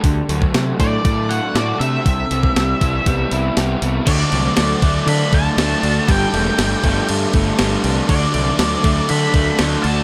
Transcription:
<<
  \new Staff \with { instrumentName = "Lead electric guitar" } { \time 4/4 \key d \mixolydian \tempo 4 = 119 r4. d''4 fis''8 d''8 e''8~ | e''2. r4 | d''2 b''8 a''4. | g''2 r2 |
d''2 b''4 r8 a''8 | }
  \new Staff \with { instrumentName = "Clean electric guitar" } { \time 4/4 \key d \mixolydian d8 d8 a8 d8 a8 fis'8 d'8 d8 | c8 e8 g8 e8 g8 e'8 b8 e8 | d8 a8 d8 a8 d'8 a8 d8 d'8 | g8 a8 g8 a8 d'8 a8 g8 d'8 |
d8 a8 d8 a8 d'8 a8 d8 d'8 | }
  \new Staff \with { instrumentName = "Overdriven electric guitar" } { \time 4/4 \key d \mixolydian d8 fis8 fis8 d'8 a8 d'8 fis'8 a8 | c8 g8 g8 e'8 b8 e'8 g'8 b8 | d8 fis8 fis8 a8 d'8 a8 d'8 fis'8 | g8 a8 g8 a8 d'8 a8 d'8 g'8 |
d8 fis8 fis8 a8 d'8 a8 d'8 fis'8 | }
  \new Staff \with { instrumentName = "Overdriven electric guitar" } { \clef bass \time 4/4 \key d \mixolydian r1 | r1 | <d a d'>4. <d a d'>4. <d a d'>4 | <g, d g>4. <g, d g>4. <g, d g>4 |
<d a d'>4. <d a d'>4. <d a d'>4 | }
  \new Staff \with { instrumentName = "Fingered electric bass" } { \clef bass \time 4/4 \key d \mixolydian d,8 d,8 c8 a,8 a,4 a,8 c8 | c,8 c,8 c,8 c,8 c,8 c,8 c,8 c,8 | d,8 c,8 d,8 d,8 d8 d,8 d,8 d,8 | g,,8 e,,8 g,,8 g,,8 g,8 g,,8 g,,8 c,8 |
d,8 c,8 d,8 d,8 d8 d,8 d,8 d,8 | }
  \new DrumStaff \with { instrumentName = "Drums" } \drummode { \time 4/4 <hho bd>8 hho16 bd16 <hho sn>8 <hho bd>8 <hho bd>8 hho8 <hho sn>8 hho8 | <hho bd>8 hho16 bd16 <hho sn>8 <hho bd>8 <hho bd>8 hho8 <hho sn>8 hho8 | <cymc bd>8 cymc8 <cymc sn>8 <cymc bd>8 cymc8 <cymc bd>8 <cymc sn>8 cymc8 | <cymc bd>8 cymc16 sn16 <cymc sn>8 <cymc bd>8 cymc8 <cymc bd>8 <cymc sn>8 cymc8 |
<cymc bd>8 cymc8 <cymc sn>8 <cymc bd>8 cymc8 <cymc bd>8 <cymc sn>8 cymc8 | }
>>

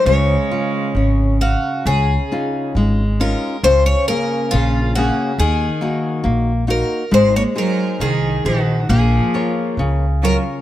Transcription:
<<
  \new Staff \with { instrumentName = "Twelve-string acoustic guitar" } { \time 2/4 \key des \major \tempo 4 = 68 des''4. ges'8 | aes'4 r8 bes'8 | c''16 des''16 bes'8 f'8 ges'8 | aes'4 r8 bes'8 |
c''16 des''16 bes'8 aes'8 ges'8 | aes'4 r8 bes'8 | }
  \new Staff \with { instrumentName = "Nylon-string guitar" } { \time 2/4 \key des \major des8 f'8 des'8 f''8 | des8 <des' ees' f'>8 aes8 <des' ees' f'>8 | des8 <bes des' aes'>8 des8 <bes des' aes'>8 | ees8 <bes ees' ges'>8 bes8 <bes ees' ges'>8 |
aes8 <ees' aes' c''>8 ees8 <ees' aes' c''>8 | bes8 <f' bes' des''>8 des8 <f' bes' des''>8 | }
  \new Staff \with { instrumentName = "Cello" } { \clef bass \time 2/4 \key des \major aes4. r8 | r2 | r2 | r2 |
aes16 bes16 ges8 ees8 ees8 | f4 r8 ges8 | }
  \new Staff \with { instrumentName = "Upright bass" } { \clef bass \time 2/4 \key des \major des,8 r8 aes,,4 | des,8 r8 aes,,4 | des,8 r8 bes,,4 | ees,8 r8 bes,,4 |
aes,,8 r8 c,8 bes,,8 | bes,,8 r8 des,4 | }
>>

